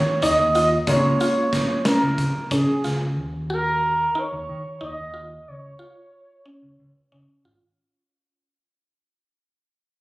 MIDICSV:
0, 0, Header, 1, 6, 480
1, 0, Start_track
1, 0, Tempo, 658617
1, 636, Time_signature, 7, 3, 24, 8
1, 7292, End_track
2, 0, Start_track
2, 0, Title_t, "Analog synth lead"
2, 0, Program_c, 0, 81
2, 0, Note_on_c, 0, 73, 100
2, 163, Note_on_c, 0, 75, 102
2, 174, Note_off_c, 0, 73, 0
2, 397, Note_off_c, 0, 75, 0
2, 402, Note_on_c, 0, 75, 93
2, 504, Note_off_c, 0, 75, 0
2, 635, Note_on_c, 0, 73, 98
2, 1324, Note_off_c, 0, 73, 0
2, 1355, Note_on_c, 0, 70, 93
2, 1804, Note_off_c, 0, 70, 0
2, 1842, Note_on_c, 0, 68, 80
2, 2171, Note_off_c, 0, 68, 0
2, 2575, Note_on_c, 0, 70, 88
2, 3046, Note_on_c, 0, 73, 99
2, 3057, Note_off_c, 0, 70, 0
2, 3518, Note_off_c, 0, 73, 0
2, 3524, Note_on_c, 0, 75, 105
2, 3993, Note_on_c, 0, 73, 83
2, 4004, Note_off_c, 0, 75, 0
2, 5193, Note_off_c, 0, 73, 0
2, 7292, End_track
3, 0, Start_track
3, 0, Title_t, "Synth arpeggio sound"
3, 0, Program_c, 1, 84
3, 164, Note_on_c, 1, 63, 74
3, 328, Note_off_c, 1, 63, 0
3, 403, Note_on_c, 1, 65, 66
3, 568, Note_off_c, 1, 65, 0
3, 880, Note_on_c, 1, 65, 75
3, 1212, Note_off_c, 1, 65, 0
3, 1355, Note_on_c, 1, 61, 71
3, 1688, Note_off_c, 1, 61, 0
3, 1832, Note_on_c, 1, 61, 82
3, 1999, Note_off_c, 1, 61, 0
3, 2073, Note_on_c, 1, 65, 69
3, 2239, Note_off_c, 1, 65, 0
3, 2551, Note_on_c, 1, 66, 69
3, 2885, Note_off_c, 1, 66, 0
3, 3026, Note_on_c, 1, 63, 75
3, 3362, Note_off_c, 1, 63, 0
3, 3504, Note_on_c, 1, 63, 76
3, 3674, Note_off_c, 1, 63, 0
3, 3744, Note_on_c, 1, 65, 64
3, 3913, Note_off_c, 1, 65, 0
3, 4220, Note_on_c, 1, 65, 65
3, 4559, Note_off_c, 1, 65, 0
3, 4705, Note_on_c, 1, 61, 70
3, 5042, Note_off_c, 1, 61, 0
3, 5189, Note_on_c, 1, 61, 68
3, 5358, Note_off_c, 1, 61, 0
3, 5430, Note_on_c, 1, 65, 65
3, 5599, Note_off_c, 1, 65, 0
3, 7292, End_track
4, 0, Start_track
4, 0, Title_t, "Grand piano"
4, 0, Program_c, 2, 0
4, 0, Note_on_c, 2, 54, 66
4, 0, Note_on_c, 2, 58, 65
4, 0, Note_on_c, 2, 61, 59
4, 0, Note_on_c, 2, 65, 77
4, 605, Note_off_c, 2, 54, 0
4, 606, Note_off_c, 2, 58, 0
4, 608, Note_off_c, 2, 61, 0
4, 609, Note_off_c, 2, 65, 0
4, 640, Note_on_c, 2, 56, 58
4, 642, Note_on_c, 2, 58, 50
4, 643, Note_on_c, 2, 61, 50
4, 646, Note_on_c, 2, 65, 57
4, 2284, Note_off_c, 2, 56, 0
4, 2285, Note_off_c, 2, 58, 0
4, 2286, Note_off_c, 2, 61, 0
4, 2287, Note_off_c, 2, 65, 0
4, 7292, End_track
5, 0, Start_track
5, 0, Title_t, "Picked electric bass"
5, 0, Program_c, 3, 34
5, 160, Note_on_c, 3, 39, 81
5, 251, Note_off_c, 3, 39, 0
5, 279, Note_on_c, 3, 39, 70
5, 555, Note_off_c, 3, 39, 0
5, 637, Note_on_c, 3, 37, 70
5, 821, Note_off_c, 3, 37, 0
5, 1472, Note_on_c, 3, 37, 79
5, 1565, Note_off_c, 3, 37, 0
5, 1591, Note_on_c, 3, 37, 82
5, 1684, Note_off_c, 3, 37, 0
5, 1832, Note_on_c, 3, 49, 73
5, 1924, Note_off_c, 3, 49, 0
5, 2078, Note_on_c, 3, 37, 69
5, 2314, Note_off_c, 3, 37, 0
5, 2314, Note_on_c, 3, 39, 75
5, 2958, Note_off_c, 3, 39, 0
5, 3151, Note_on_c, 3, 39, 64
5, 3243, Note_off_c, 3, 39, 0
5, 3272, Note_on_c, 3, 51, 69
5, 3363, Note_off_c, 3, 51, 0
5, 3508, Note_on_c, 3, 39, 71
5, 3601, Note_off_c, 3, 39, 0
5, 3640, Note_on_c, 3, 39, 70
5, 3913, Note_off_c, 3, 39, 0
5, 3996, Note_on_c, 3, 37, 66
5, 4178, Note_off_c, 3, 37, 0
5, 4827, Note_on_c, 3, 37, 67
5, 4921, Note_off_c, 3, 37, 0
5, 4950, Note_on_c, 3, 37, 71
5, 5043, Note_off_c, 3, 37, 0
5, 5192, Note_on_c, 3, 49, 63
5, 5284, Note_off_c, 3, 49, 0
5, 5425, Note_on_c, 3, 32, 64
5, 5520, Note_off_c, 3, 32, 0
5, 7292, End_track
6, 0, Start_track
6, 0, Title_t, "Drums"
6, 161, Note_on_c, 9, 42, 69
6, 234, Note_off_c, 9, 42, 0
6, 399, Note_on_c, 9, 42, 48
6, 472, Note_off_c, 9, 42, 0
6, 635, Note_on_c, 9, 42, 64
6, 636, Note_on_c, 9, 36, 88
6, 707, Note_off_c, 9, 42, 0
6, 709, Note_off_c, 9, 36, 0
6, 876, Note_on_c, 9, 42, 53
6, 949, Note_off_c, 9, 42, 0
6, 1113, Note_on_c, 9, 36, 63
6, 1114, Note_on_c, 9, 38, 29
6, 1114, Note_on_c, 9, 42, 46
6, 1186, Note_off_c, 9, 36, 0
6, 1187, Note_off_c, 9, 38, 0
6, 1187, Note_off_c, 9, 42, 0
6, 1349, Note_on_c, 9, 38, 96
6, 1349, Note_on_c, 9, 42, 68
6, 1422, Note_off_c, 9, 38, 0
6, 1422, Note_off_c, 9, 42, 0
6, 1589, Note_on_c, 9, 42, 54
6, 1590, Note_on_c, 9, 36, 66
6, 1662, Note_off_c, 9, 42, 0
6, 1663, Note_off_c, 9, 36, 0
6, 1829, Note_on_c, 9, 38, 28
6, 1829, Note_on_c, 9, 42, 74
6, 1830, Note_on_c, 9, 36, 91
6, 1902, Note_off_c, 9, 38, 0
6, 1902, Note_off_c, 9, 42, 0
6, 1903, Note_off_c, 9, 36, 0
6, 2070, Note_on_c, 9, 38, 28
6, 2070, Note_on_c, 9, 42, 51
6, 2142, Note_off_c, 9, 38, 0
6, 2142, Note_off_c, 9, 42, 0
6, 7292, End_track
0, 0, End_of_file